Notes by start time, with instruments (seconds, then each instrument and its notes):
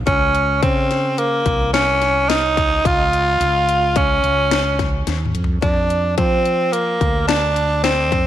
0.06 fretless electric bass C#2, tenor saxophone C#4, kick, closed hi-hat
0.35 closed hi-hat
0.63 fretless electric bass C#3, tenor saxophone C4, kick, closed hi-hat
0.91 snare, closed hi-hat
1.18 tenor saxophone A#3, closed hi-hat
1.46 fretless electric bass C2, kick, closed hi-hat
1.73 tenor saxophone C#4, snare, closed hi-hat
2.02 snare, closed hi-hat
2.29 tenor saxophone D#4, snare, closed hi-hat
2.57 fretless electric bass C#2, kick, closed hi-hat
2.85 fretless electric bass C#2, tenor saxophone F4, kick, closed hi-hat
3.13 closed hi-hat
3.40 fretless electric bass C#2, closed hi-hat
3.69 closed hi-hat
3.96 tenor saxophone C#4, kick, closed hi-hat
4.24 fretless electric bass C#2, closed hi-hat
4.51 snare, closed hi-hat
4.79 kick, snare, closed hi-hat
5.07 fretless electric bass D#2, snare, closed hi-hat
5.26 mid tom
5.34 fretless electric bass F2, closed hi-hat
5.44 floor tom
5.62 fretless electric bass F2, tenor saxophone D4, kick, closed hi-hat
5.90 closed hi-hat
6.17 fretless electric bass F3, tenor saxophone C4, kick, closed hi-hat
6.46 closed hi-hat
6.72 tenor saxophone A#3, closed hi-hat
7.01 fretless electric bass D2, kick, closed hi-hat
7.27 tenor saxophone D4, snare, closed hi-hat
7.56 closed hi-hat
7.84 tenor saxophone C4, snare, closed hi-hat
8.12 fretless electric bass F2, kick, closed hi-hat